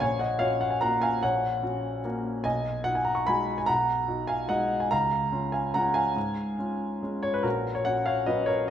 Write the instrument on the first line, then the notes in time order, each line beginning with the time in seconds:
grand piano
0.00 A#1 C#5 G#5
0.19 D#5 F#5
0.39 C#4 F#4 C#5 F5
0.61 F#5
0.70 G#5
0.81 A#3 C#4 F#4 F#5 A#5
1.02 F5 G#5
1.23 A#1 C#5 F#5
1.63 C#4 F#4
2.05 A#3 C#4 F#4
2.44 B1 D#5 G#5
2.84 D#4 F#4 F#5
2.95 G#5
3.05 A#5
3.15 C#6
3.27 G#3 D#4 F#4 G#5 B5
3.58 G#5
3.66 B1 F#5 A#5
4.08 D#4 F#4
4.27 F5 G#5
4.49 G#3 D#4 F#4 D#5 F#5
4.80 G#5
4.91 C#2 F5 A#5
5.32 C#4 F4
5.52 F5 G#5
5.74 G#3 C#4 F4 F#5 A#5
5.94 F5 G#5
6.16 G#2
6.59 C#4 F4
7.03 G#3 C#4 F4
7.23 C#5
7.34 B4
7.43 A#1 F#4 A#4
7.75 C#5
7.85 C#4 F#4 C#5 F#5
8.06 C#5 F5
8.26 F#3 C#4 F#4 B4 D#5
8.46 A#4 C#5